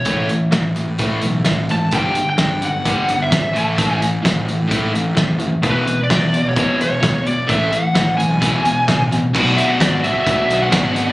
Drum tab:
CC |--------|--------|--------|--------|
HH |xxxxxxxx|xxxxxxxx|xxxxxxxx|xxxxxxxx|
SD |--o---o-|--o---o-|--o---o-|--o---o-|
BD |o-o-o-o-|o-o-o-o-|o-o-o-o-|o-o-o-o-|

CC |--------|x-------|
HH |xxxxxxxx|-xxxxxxx|
SD |--o---o-|--o---o-|
BD |o-o-o-o-|o-o-o-o-|